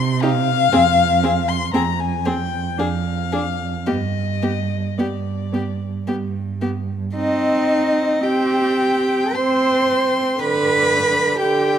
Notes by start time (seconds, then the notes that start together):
Already playing: C3 C6
0.22 D#4 G4 F5
0.72 F2 C4 G#4
1.23 C4 G#4
1.49 C6
1.74 F2 C4 G#4 A#5
2.00 G#5
2.26 C4 G#4 G5
2.78 F2 D4 G#4 F5
3.32 D4 G#4
3.87 G2 B3 G4 D#5
4.42 B3 G4
4.98 G2 B3 G4 D5
5.53 B3 G4
6.07 G2 B3 G4
6.61 B3 G4
7.15 C4 D#4 D#5
7.70 G5
8.23 C4 G4 G5
8.79 G5
9.34 C4 C5 C6
9.89 G5
10.38 D3 B4 G5 B5
10.89 G5
11.39 D3 G4 G5